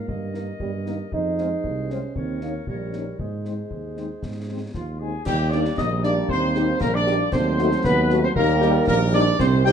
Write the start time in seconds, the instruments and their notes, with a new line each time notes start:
Already playing: euphonium A#3, woodwind section A#4
0.08 tuba G2, woodwind section D#5, concert bass drum
0.34 french horn section A#3 D#4, trumpet section A#4, snare
0.60 tuba G2, euphonium G3, concert bass drum
0.86 euphonium D#3, french horn section A#3 D#4, trumpet section A#4, snare
1.12 tuba F2, euphonium D#4, woodwind section G#4 C5, concert bass drum
1.38 french horn section G#3 C4, trumpet section F4, snare
1.64 tuba C2, concert bass drum
1.90 french horn section G#3 C4, euphonium C#4, trumpet section F4, snare
2.16 tuba D#2, euphonium C4, woodwind section A#4 C#5, concert bass drum
2.41 french horn section A#3 C#4 D#4, euphonium A#3, trumpet section A#4, snare
2.67 tuba A#1, euphonium G3, woodwind section A#4 C#5, concert bass drum
2.93 french horn section A#3 C#4 D#4, trumpet section A#4, snare
3.19 tuba G#2, euphonium G#3, woodwind section G#4 C5, concert bass drum
3.45 french horn section G#3 C4 D#4, trumpet section C5, snare
3.71 tuba D#2, concert bass drum
3.96 french horn section G#3 C4 D#4, trumpet section C5, snare
4.23 tuba G#2, concert bass drum, snare
4.49 french horn section G#3 C4 D#4, trumpet section C5
4.73 tuba D#2, euphonium F3, trumpet section F4, woodwind section F4, piccolo F5, concert bass drum, snare
4.99 euphonium G#3, french horn section G#3 C4 D#4, woodwind section G#4, trumpet section G#4 C5, piccolo G#5
5.25 tuba D#2, euphonium G3, trombone section G3 A#3, woodwind section G4, trumpet section G4, piccolo G5, concert bass drum, snare, crash
5.51 french horn section A#3 D#4 G4, euphonium D4, woodwind section D5, trumpet section D5, piccolo D6, snare
5.65 snare
5.77 tuba A#1, euphonium D#4, woodwind section D#5, trumpet section D#5, piccolo D#6, concert bass drum, snare
6.03 french horn section A#3 D#4 G4, euphonium D4, woodwind section D5, trumpet section D5, piccolo D6, snare
6.29 tuba D#2, euphonium C4, trumpet section C5, woodwind section C5, piccolo C6, concert bass drum
6.55 french horn section A#3 D#4 G4, snare
6.81 tuba A#1, euphonium A#3, woodwind section A#4, trumpet section A#4, piccolo A#5, concert bass drum, snare
6.94 euphonium D4, woodwind section D5, trumpet section D5, piccolo D6
7.07 french horn section A#3 D#4 G4, snare
7.32 tuba D#2, trombone section F#3 A3, euphonium C4, woodwind section C5, trumpet section C5, piccolo C6, concert bass drum, snare, crash
7.59 french horn section A3 D#4 F#4, snare
7.72 snare
7.83 tuba D#2, euphonium B3, woodwind section B4, trumpet section B4, piccolo B5, concert bass drum, snare
8.10 french horn section A3 D#4 F#4, snare
8.23 euphonium C4, woodwind section C5, trumpet section C5, piccolo C6
8.36 tuba D#2, trombone section D#3 G3, euphonium A#3, trumpet section A#4, woodwind section A#4, piccolo A#5, concert bass drum
8.62 french horn section G3 D#4 G4, snare
8.87 tuba A#1, euphonium A#3, trumpet section A#4, woodwind section A#4, piccolo A#5, concert bass drum, snare
9.13 french horn section G3 D#4 G4, euphonium D4, woodwind section D5, trumpet section D5, piccolo D6, snare
9.39 tuba C2, trombone section D#3 G3, euphonium C4, trumpet section C5, woodwind section C5, piccolo C6, concert bass drum, snare, crash
9.64 french horn section G3 D#4 C5, euphonium G4, woodwind section G5, trumpet section G5, piccolo G6, snare